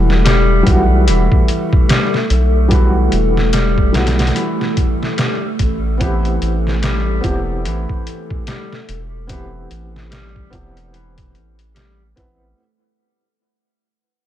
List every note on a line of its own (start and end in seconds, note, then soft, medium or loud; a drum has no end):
0.00 0.63 E1 loud
0.00 0.22 E3 medium
0.00 0.61 G3 medium
0.00 12.60 A3 medium
0.00 0.62 B3 medium
0.00 0.62 E4 medium
0.00 0.63 F#4 medium
0.00 12.60 A4 medium
0.10 snare soft
0.25 0.64 G3 loud
0.25 snare loud
0.25 closed hi-hat medium
0.63 1.05 E2 medium
0.63 2.66 G3 medium
0.63 2.67 B3 medium
0.63 2.68 E4 medium
0.63 kick medium
0.63 closed hi-hat medium
0.67 1.09 B1 medium
0.67 2.68 F#4 medium
1.07 1.29 E1 medium
1.07 1.86 E3 medium
1.07 closed hi-hat medium
1.32 kick medium
1.48 closed hi-hat medium
1.73 kick loud
1.89 2.16 G3 medium
1.89 snare loud
1.89 closed hi-hat medium
2.14 snare soft
2.30 3.09 B1 medium
2.30 closed hi-hat medium
2.68 3.50 E3 medium
2.68 3.89 G3 medium
2.68 3.90 B3 medium
2.68 3.91 E4 medium
2.68 kick loud
2.68 closed hi-hat medium
2.73 3.92 F#4 medium
3.12 3.92 E1 loud
3.12 closed hi-hat medium
3.37 snare soft
3.53 3.93 G3 loud
3.53 snare loud
3.53 closed hi-hat medium
3.78 kick loud
3.93 4.32 B1 loud
3.93 4.34 E2 medium
3.93 5.95 G3 medium
3.93 5.96 B3 medium
3.93 5.97 E4 medium
3.93 snare medium
3.93 closed hi-hat medium
3.97 5.98 F#4 medium
4.07 snare medium
4.07 closed hi-hat medium
4.19 snare medium
4.19 closed hi-hat medium
4.27 snare medium
4.27 closed hi-hat medium
4.35 5.14 E3 medium
4.35 closed hi-hat medium
4.61 snare soft
4.77 kick medium
4.77 closed hi-hat medium
5.03 snare soft
5.17 5.44 G3 medium
5.17 snare loud
5.17 closed hi-hat medium
5.59 6.38 A1 medium
5.59 kick loud
5.59 closed hi-hat medium
5.97 6.79 E3 medium
5.97 7.18 B3 medium
5.97 7.19 C4 medium
5.97 7.20 E4 medium
5.97 kick loud
5.97 closed hi-hat loud
6.02 7.21 G4 medium
6.25 closed hi-hat soft
6.42 7.21 A1 loud
6.42 closed hi-hat medium
6.67 snare soft
6.82 7.22 G3 loud
6.82 snare loud
6.82 closed hi-hat medium
7.21 7.67 E1 medium
7.21 7.63 E2 medium
7.21 9.24 B3 medium
7.21 9.24 C4 medium
7.21 9.25 E4 medium
7.21 kick loud
7.21 closed hi-hat medium
7.25 9.26 G4 medium
7.65 7.86 A1 loud
7.65 8.44 E3 medium
7.65 closed hi-hat medium
7.89 kick medium
8.07 closed hi-hat medium
8.30 kick loud
8.47 8.74 G3 medium
8.47 snare loud
8.47 closed hi-hat medium
8.73 snare soft
8.89 9.67 E1 medium
8.89 closed hi-hat medium
9.27 10.08 E3 medium
9.27 10.47 B3 medium
9.27 10.48 C4 medium
9.27 10.49 E4 medium
9.27 kick loud
9.27 closed hi-hat loud
9.31 10.50 G4 medium
9.71 10.50 A1 medium
9.71 closed hi-hat medium
9.96 snare soft
10.11 10.50 G3 loud
10.11 snare loud
10.11 closed hi-hat medium
10.36 kick loud
10.50 11.37 E1 loud
10.50 10.92 E2 medium
10.50 12.12 B3 medium
10.50 12.13 C4 medium
10.50 12.14 E4 medium
10.50 kick medium
10.50 closed hi-hat medium
10.55 12.15 G4 medium
10.77 closed hi-hat soft
10.93 11.72 E3 medium
10.93 closed hi-hat medium
11.18 kick loud
11.18 closed hi-hat medium
11.35 12.14 A1 medium
11.35 closed hi-hat soft
11.59 closed hi-hat medium
11.75 12.02 G3 medium
11.75 snare loud
11.75 closed hi-hat medium
12.16 12.54 A1 medium
12.16 12.53 B3 medium
12.16 12.53 C4 medium
12.16 12.54 E4 medium
12.16 12.54 B4 medium
12.16 kick loud
12.16 closed hi-hat medium